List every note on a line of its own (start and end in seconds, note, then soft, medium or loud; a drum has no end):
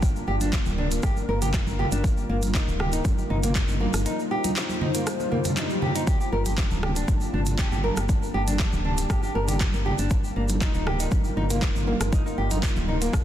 0.00 0.23 G1 loud
0.00 2.00 G3 medium
0.00 6.04 A#3 medium
0.00 2.00 D4 medium
0.00 2.00 F4 medium
0.00 4.02 A#4 medium
0.00 kick loud
0.00 closed hi-hat soft
0.00 shaker medium
0.16 shaker soft
0.27 0.61 G1 medium
0.27 0.35 G4 medium
0.27 muted conga soft
0.41 0.52 D4 medium
0.41 closed hi-hat medium
0.41 high conga loud
0.41 shaker medium
0.53 kick loud
0.53 clap loud
0.53 closed hi-hat soft
0.53 muted conga medium
0.53 shaker medium
0.65 0.99 D1 loud
0.65 high conga medium
0.65 shaker soft
0.78 0.85 D4 medium
0.78 muted conga soft
0.78 low conga medium
0.91 closed hi-hat medium
0.91 shaker medium
1.03 1.23 G1 medium
1.03 1.16 G4 medium
1.03 kick loud
1.03 cross-stick medium
1.03 closed hi-hat soft
1.03 shaker medium
1.16 muted conga medium
1.16 shaker soft
1.28 1.62 G1 loud
1.28 1.40 A#4 medium
1.41 1.48 G4 medium
1.41 closed hi-hat medium
1.41 muted conga soft
1.41 high conga medium
1.41 low conga loud
1.41 shaker medium
1.54 kick loud
1.54 clap loud
1.54 closed hi-hat soft
1.54 shaker medium
1.67 1.86 G1 medium
1.67 muted conga medium
1.67 shaker soft
1.79 1.86 G4 medium
1.79 low conga loud
1.92 2.25 G1 loud
1.92 2.03 D4 medium
1.92 closed hi-hat medium
1.92 shaker medium
2.03 13.24 G3 medium
2.03 6.04 D#4 medium
2.03 8.05 F4 medium
2.03 kick loud
2.03 closed hi-hat soft
2.03 muted conga medium
2.03 shaker medium
2.17 shaker soft
2.29 2.62 G1 loud
2.29 2.36 A#3 medium
2.29 muted conga soft
2.42 closed hi-hat medium
2.42 high conga loud
2.42 shaker medium
2.55 2.67 D#4 medium
2.55 kick loud
2.55 clap loud
2.55 closed hi-hat soft
2.55 shaker medium
2.68 3.00 D1 loud
2.68 high conga medium
2.68 shaker soft
2.79 2.92 G4 medium
2.79 cross-stick medium
2.79 muted conga soft
2.79 low conga loud
2.92 2.99 D#4 medium
2.92 closed hi-hat medium
2.92 shaker medium
3.05 3.24 G1 medium
3.05 kick loud
3.05 closed hi-hat soft
3.05 high conga loud
3.05 shaker medium
3.18 muted conga medium
3.18 shaker soft
3.30 3.63 G1 loud
3.30 3.37 D#4 medium
3.30 low conga medium
3.43 3.54 A#3 medium
3.43 closed hi-hat medium
3.43 muted conga soft
3.43 low conga loud
3.43 shaker medium
3.55 kick loud
3.55 clap loud
3.55 closed hi-hat soft
3.55 shaker medium
3.68 3.87 G1 medium
3.68 muted conga medium
3.68 low conga medium
3.68 shaker soft
3.80 3.88 A#3 medium
3.80 high conga loud
3.94 4.06 G1 loud
3.94 cross-stick medium
3.94 closed hi-hat medium
3.94 shaker medium
4.06 4.18 D#4 medium
4.06 6.05 C5 loud
4.06 closed hi-hat soft
4.06 muted conga medium
4.06 shaker medium
4.19 shaker soft
4.31 4.43 G4 medium
4.31 muted conga soft
4.44 4.51 D#4 medium
4.44 closed hi-hat medium
4.44 high conga loud
4.44 shaker medium
4.56 clap loud
4.56 closed hi-hat soft
4.56 muted conga medium
4.56 shaker medium
4.69 high conga medium
4.69 shaker soft
4.81 4.89 D#4 medium
4.81 muted conga soft
4.81 low conga loud
4.94 5.05 A#3 medium
4.94 closed hi-hat medium
4.94 shaker medium
5.07 cross-stick medium
5.07 closed hi-hat soft
5.07 swell medium
5.07 shaker medium
5.20 muted conga medium
5.20 shaker soft
5.32 5.39 A#3 medium
5.32 low conga medium
5.45 closed hi-hat medium
5.45 muted conga soft
5.45 high conga medium
5.45 low conga loud
5.45 shaker medium
5.57 5.70 D#4 medium
5.57 clap loud
5.57 closed hi-hat soft
5.57 high conga loud
5.57 shaker medium
5.70 muted conga medium
5.70 shaker soft
5.82 5.94 G4 medium
5.82 low conga loud
5.95 6.02 D#4 medium
5.95 closed hi-hat medium
5.95 shaker medium
6.07 13.24 A#3 medium
6.07 10.07 D4 medium
6.07 6.19 G4 medium
6.07 10.07 A5 loud
6.07 kick loud
6.07 closed hi-hat soft
6.07 muted conga medium
6.07 shaker medium
6.20 6.31 G4 medium
6.20 shaker soft
6.32 6.66 G1 loud
6.32 6.44 A#4 medium
6.32 muted conga soft
6.46 6.52 G4 medium
6.46 closed hi-hat medium
6.46 high conga loud
6.46 shaker medium
6.58 kick loud
6.58 clap loud
6.58 closed hi-hat soft
6.58 muted conga medium
6.58 shaker medium
6.71 7.04 D1 loud
6.71 high conga medium
6.71 shaker soft
6.83 6.90 G4 medium
6.83 cross-stick loud
6.83 muted conga soft
6.83 low conga loud
6.96 7.07 D4 medium
6.96 closed hi-hat medium
6.96 shaker medium
7.08 7.28 G1 medium
7.08 kick loud
7.08 closed hi-hat soft
7.08 high conga medium
7.08 shaker medium
7.21 muted conga medium
7.21 shaker soft
7.33 7.67 G1 loud
7.33 7.41 D4 medium
7.33 low conga medium
7.46 closed hi-hat medium
7.46 muted conga soft
7.46 low conga medium
7.46 shaker medium
7.58 7.71 G4 medium
7.58 kick loud
7.58 clap loud
7.58 closed hi-hat soft
7.58 shaker medium
7.72 7.91 G1 medium
7.72 7.83 G4 medium
7.72 muted conga medium
7.72 low conga medium
7.72 shaker soft
7.84 7.96 A#4 medium
7.84 high conga loud
7.97 8.30 G1 loud
7.97 8.04 G4 medium
7.97 cross-stick loud
7.97 closed hi-hat medium
7.97 shaker medium
8.08 10.09 G4 medium
8.08 kick loud
8.08 closed hi-hat soft
8.08 muted conga soft
8.08 shaker medium
8.23 shaker soft
8.34 8.68 G1 loud
8.34 8.41 G4 medium
8.34 muted conga soft
8.47 8.58 D4 medium
8.47 closed hi-hat medium
8.47 high conga loud
8.47 shaker medium
8.59 kick loud
8.59 clap loud
8.59 closed hi-hat soft
8.59 muted conga medium
8.59 shaker medium
8.73 9.05 D1 loud
8.73 high conga medium
8.73 shaker soft
8.85 8.92 D4 medium
8.85 muted conga soft
8.85 low conga loud
8.98 closed hi-hat medium
8.98 shaker medium
9.10 9.29 G1 medium
9.10 9.22 G4 medium
9.10 kick loud
9.10 cross-stick loud
9.10 closed hi-hat soft
9.10 shaker medium
9.23 9.34 G4 medium
9.23 muted conga medium
9.23 shaker soft
9.35 9.68 G1 loud
9.35 9.47 A#4 medium
9.48 9.55 G4 medium
9.48 closed hi-hat medium
9.48 muted conga soft
9.48 high conga medium
9.48 low conga loud
9.48 shaker medium
9.60 kick loud
9.60 clap loud
9.60 closed hi-hat soft
9.60 shaker medium
9.74 9.92 G1 medium
9.74 muted conga medium
9.74 shaker soft
9.86 9.93 G4 medium
9.86 low conga loud
9.99 10.31 G1 loud
9.99 10.10 D4 medium
9.99 closed hi-hat medium
9.99 shaker medium
10.10 13.24 D#4 medium
10.10 13.24 F4 medium
10.10 13.24 A#4 loud
10.10 kick loud
10.10 closed hi-hat soft
10.10 muted conga soft
10.10 shaker medium
10.24 shaker soft
10.36 10.69 G1 loud
10.36 10.43 A#3 medium
10.36 muted conga soft
10.49 closed hi-hat medium
10.49 high conga loud
10.49 shaker medium
10.61 10.73 D#4 medium
10.61 kick loud
10.61 clap loud
10.61 closed hi-hat soft
10.61 muted conga medium
10.61 shaker medium
10.74 11.07 D1 loud
10.74 10.85 D#4 medium
10.74 high conga medium
10.74 shaker soft
10.86 10.98 G4 medium
10.86 cross-stick loud
10.86 muted conga soft
10.86 low conga loud
11.00 11.06 D#4 medium
11.00 closed hi-hat medium
11.00 shaker medium
11.11 11.31 G1 medium
11.11 kick loud
11.11 closed hi-hat soft
11.11 high conga medium
11.11 shaker medium
11.24 muted conga soft
11.24 shaker soft
11.37 11.70 G1 loud
11.37 11.44 D#4 medium
11.37 low conga medium
11.50 11.61 A#3 medium
11.50 closed hi-hat medium
11.50 muted conga soft
11.50 low conga loud
11.50 shaker medium
11.62 kick loud
11.62 clap loud
11.62 closed hi-hat soft
11.62 shaker medium
11.75 11.94 G1 medium
11.75 muted conga soft
11.75 low conga medium
11.75 shaker soft
11.87 11.95 A#3 medium
11.87 high conga loud
12.01 12.33 G1 loud
12.01 cross-stick loud
12.01 closed hi-hat medium
12.01 shaker medium
12.12 12.25 D#4 medium
12.12 kick loud
12.12 closed hi-hat soft
12.12 muted conga soft
12.12 shaker medium
12.26 12.37 D#4 medium
12.26 shaker soft
12.38 12.71 G1 loud
12.38 12.50 G4 medium
12.38 muted conga soft
12.51 12.57 D#4 medium
12.51 closed hi-hat medium
12.51 high conga loud
12.51 shaker medium
12.63 kick loud
12.63 clap loud
12.63 closed hi-hat soft
12.63 shaker medium
12.76 13.09 D1 loud
12.76 high conga medium
12.76 shaker soft
12.88 12.95 D#4 medium
12.88 muted conga soft
12.88 low conga medium
13.01 13.12 A#3 medium
13.01 closed hi-hat medium
13.01 shaker medium
13.13 13.24 F1 loud
13.13 kick loud
13.13 cross-stick loud
13.13 closed hi-hat soft
13.13 shaker medium